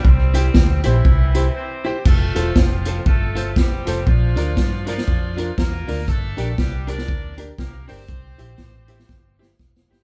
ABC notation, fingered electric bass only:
X:1
M:4/4
L:1/8
Q:"Swing" 1/4=119
K:F
V:1 name="Fingered electric bass" clef=bass
C,,2 D,, B,,, C,,2 z2 | F,,, E,,, F,,,2 G,,,2 F,,, F,,, | B,,, D,, G,,2 F,,2 E,, D,, | G,,, B,,, C,,2 D,,2 C,, G,,, |
C,, B,,, z2 G,,,2 E,,, G,,, |]